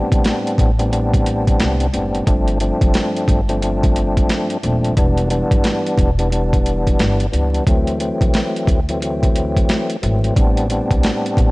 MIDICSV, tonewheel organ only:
0, 0, Header, 1, 2, 480
1, 0, Start_track
1, 0, Key_signature, 0, "minor"
1, 0, Tempo, 674157
1, 1618, Time_signature, 4, 2, 24, 8
1, 8199, End_track
2, 0, Start_track
2, 0, Title_t, "Tonewheel organ"
2, 0, Program_c, 0, 16
2, 0, Note_on_c, 0, 45, 94
2, 0, Note_on_c, 0, 55, 91
2, 0, Note_on_c, 0, 59, 86
2, 0, Note_on_c, 0, 60, 97
2, 0, Note_on_c, 0, 62, 104
2, 506, Note_off_c, 0, 45, 0
2, 508, Note_off_c, 0, 55, 0
2, 508, Note_off_c, 0, 59, 0
2, 510, Note_off_c, 0, 60, 0
2, 511, Note_off_c, 0, 62, 0
2, 559, Note_on_c, 0, 45, 92
2, 562, Note_on_c, 0, 55, 82
2, 564, Note_on_c, 0, 59, 85
2, 566, Note_on_c, 0, 60, 88
2, 570, Note_on_c, 0, 62, 106
2, 642, Note_off_c, 0, 45, 0
2, 644, Note_off_c, 0, 55, 0
2, 646, Note_off_c, 0, 59, 0
2, 649, Note_off_c, 0, 60, 0
2, 650, Note_on_c, 0, 45, 94
2, 651, Note_off_c, 0, 62, 0
2, 653, Note_on_c, 0, 55, 85
2, 655, Note_on_c, 0, 59, 82
2, 657, Note_on_c, 0, 60, 88
2, 659, Note_on_c, 0, 62, 102
2, 1331, Note_off_c, 0, 45, 0
2, 1332, Note_off_c, 0, 55, 0
2, 1333, Note_off_c, 0, 59, 0
2, 1335, Note_off_c, 0, 60, 0
2, 1336, Note_off_c, 0, 62, 0
2, 1374, Note_on_c, 0, 45, 76
2, 1375, Note_on_c, 0, 55, 72
2, 1378, Note_on_c, 0, 59, 73
2, 1380, Note_on_c, 0, 60, 71
2, 1383, Note_on_c, 0, 62, 91
2, 1602, Note_off_c, 0, 45, 0
2, 1602, Note_off_c, 0, 55, 0
2, 1604, Note_off_c, 0, 59, 0
2, 1605, Note_off_c, 0, 60, 0
2, 1606, Note_off_c, 0, 62, 0
2, 1608, Note_on_c, 0, 43, 100
2, 1610, Note_on_c, 0, 53, 88
2, 1613, Note_on_c, 0, 57, 92
2, 1615, Note_on_c, 0, 60, 86
2, 1618, Note_on_c, 0, 62, 100
2, 1839, Note_off_c, 0, 43, 0
2, 1840, Note_off_c, 0, 53, 0
2, 1841, Note_off_c, 0, 57, 0
2, 1843, Note_off_c, 0, 60, 0
2, 1844, Note_off_c, 0, 62, 0
2, 1854, Note_on_c, 0, 43, 95
2, 1857, Note_on_c, 0, 53, 92
2, 1859, Note_on_c, 0, 57, 85
2, 1862, Note_on_c, 0, 60, 85
2, 1863, Note_on_c, 0, 62, 104
2, 2426, Note_off_c, 0, 43, 0
2, 2428, Note_off_c, 0, 53, 0
2, 2429, Note_off_c, 0, 57, 0
2, 2430, Note_off_c, 0, 60, 0
2, 2431, Note_off_c, 0, 62, 0
2, 2478, Note_on_c, 0, 43, 89
2, 2481, Note_on_c, 0, 53, 84
2, 2484, Note_on_c, 0, 57, 83
2, 2486, Note_on_c, 0, 60, 88
2, 2488, Note_on_c, 0, 62, 107
2, 2572, Note_off_c, 0, 43, 0
2, 2574, Note_off_c, 0, 53, 0
2, 2576, Note_off_c, 0, 57, 0
2, 2579, Note_off_c, 0, 60, 0
2, 2580, Note_on_c, 0, 43, 98
2, 2581, Note_off_c, 0, 62, 0
2, 2582, Note_on_c, 0, 53, 90
2, 2585, Note_on_c, 0, 57, 86
2, 2587, Note_on_c, 0, 60, 88
2, 2590, Note_on_c, 0, 62, 103
2, 3256, Note_off_c, 0, 43, 0
2, 3257, Note_off_c, 0, 53, 0
2, 3258, Note_off_c, 0, 57, 0
2, 3260, Note_off_c, 0, 60, 0
2, 3261, Note_off_c, 0, 62, 0
2, 3293, Note_on_c, 0, 43, 73
2, 3295, Note_on_c, 0, 53, 78
2, 3298, Note_on_c, 0, 57, 68
2, 3300, Note_on_c, 0, 60, 70
2, 3303, Note_on_c, 0, 62, 90
2, 3521, Note_off_c, 0, 43, 0
2, 3522, Note_off_c, 0, 53, 0
2, 3524, Note_off_c, 0, 57, 0
2, 3525, Note_off_c, 0, 60, 0
2, 3526, Note_off_c, 0, 62, 0
2, 3537, Note_on_c, 0, 52, 93
2, 3540, Note_on_c, 0, 55, 84
2, 3543, Note_on_c, 0, 59, 84
2, 3546, Note_on_c, 0, 62, 106
2, 3763, Note_off_c, 0, 52, 0
2, 3765, Note_off_c, 0, 55, 0
2, 3766, Note_off_c, 0, 59, 0
2, 3768, Note_off_c, 0, 62, 0
2, 3773, Note_on_c, 0, 52, 88
2, 3775, Note_on_c, 0, 55, 84
2, 3779, Note_on_c, 0, 59, 80
2, 3782, Note_on_c, 0, 62, 111
2, 4346, Note_off_c, 0, 52, 0
2, 4347, Note_off_c, 0, 55, 0
2, 4349, Note_off_c, 0, 59, 0
2, 4350, Note_off_c, 0, 62, 0
2, 4403, Note_on_c, 0, 52, 90
2, 4405, Note_on_c, 0, 55, 81
2, 4408, Note_on_c, 0, 59, 80
2, 4412, Note_on_c, 0, 62, 102
2, 4477, Note_off_c, 0, 52, 0
2, 4481, Note_off_c, 0, 55, 0
2, 4484, Note_off_c, 0, 59, 0
2, 4486, Note_on_c, 0, 52, 95
2, 4487, Note_off_c, 0, 62, 0
2, 4489, Note_on_c, 0, 55, 86
2, 4492, Note_on_c, 0, 59, 86
2, 4496, Note_on_c, 0, 62, 99
2, 5169, Note_off_c, 0, 52, 0
2, 5171, Note_off_c, 0, 55, 0
2, 5172, Note_off_c, 0, 59, 0
2, 5174, Note_off_c, 0, 62, 0
2, 5212, Note_on_c, 0, 52, 84
2, 5215, Note_on_c, 0, 55, 74
2, 5219, Note_on_c, 0, 59, 73
2, 5222, Note_on_c, 0, 62, 83
2, 5441, Note_off_c, 0, 52, 0
2, 5442, Note_off_c, 0, 55, 0
2, 5444, Note_off_c, 0, 59, 0
2, 5446, Note_off_c, 0, 62, 0
2, 5458, Note_on_c, 0, 52, 91
2, 5461, Note_on_c, 0, 54, 88
2, 5465, Note_on_c, 0, 57, 91
2, 5468, Note_on_c, 0, 60, 107
2, 5683, Note_off_c, 0, 52, 0
2, 5685, Note_off_c, 0, 54, 0
2, 5687, Note_off_c, 0, 57, 0
2, 5689, Note_off_c, 0, 60, 0
2, 5691, Note_on_c, 0, 52, 92
2, 5694, Note_on_c, 0, 54, 85
2, 5697, Note_on_c, 0, 57, 83
2, 5701, Note_on_c, 0, 60, 99
2, 6265, Note_off_c, 0, 52, 0
2, 6266, Note_off_c, 0, 54, 0
2, 6268, Note_off_c, 0, 57, 0
2, 6270, Note_off_c, 0, 60, 0
2, 6329, Note_on_c, 0, 52, 88
2, 6331, Note_on_c, 0, 54, 86
2, 6335, Note_on_c, 0, 57, 93
2, 6339, Note_on_c, 0, 60, 99
2, 6404, Note_off_c, 0, 52, 0
2, 6407, Note_off_c, 0, 54, 0
2, 6410, Note_off_c, 0, 57, 0
2, 6412, Note_on_c, 0, 52, 94
2, 6413, Note_off_c, 0, 60, 0
2, 6415, Note_on_c, 0, 54, 81
2, 6419, Note_on_c, 0, 57, 85
2, 6422, Note_on_c, 0, 60, 104
2, 7092, Note_off_c, 0, 52, 0
2, 7094, Note_off_c, 0, 54, 0
2, 7095, Note_off_c, 0, 57, 0
2, 7097, Note_off_c, 0, 60, 0
2, 7135, Note_on_c, 0, 52, 71
2, 7138, Note_on_c, 0, 54, 69
2, 7141, Note_on_c, 0, 57, 74
2, 7145, Note_on_c, 0, 60, 84
2, 7362, Note_off_c, 0, 52, 0
2, 7364, Note_off_c, 0, 54, 0
2, 7365, Note_off_c, 0, 57, 0
2, 7367, Note_off_c, 0, 60, 0
2, 7370, Note_on_c, 0, 45, 93
2, 7372, Note_on_c, 0, 55, 93
2, 7375, Note_on_c, 0, 59, 83
2, 7378, Note_on_c, 0, 60, 90
2, 7379, Note_on_c, 0, 62, 107
2, 7600, Note_off_c, 0, 45, 0
2, 7601, Note_off_c, 0, 55, 0
2, 7602, Note_off_c, 0, 59, 0
2, 7604, Note_off_c, 0, 60, 0
2, 7605, Note_off_c, 0, 62, 0
2, 7615, Note_on_c, 0, 45, 93
2, 7617, Note_on_c, 0, 55, 92
2, 7620, Note_on_c, 0, 59, 89
2, 7622, Note_on_c, 0, 60, 95
2, 7625, Note_on_c, 0, 62, 104
2, 8187, Note_off_c, 0, 45, 0
2, 8188, Note_off_c, 0, 55, 0
2, 8189, Note_off_c, 0, 59, 0
2, 8190, Note_off_c, 0, 60, 0
2, 8191, Note_off_c, 0, 62, 0
2, 8199, End_track
0, 0, End_of_file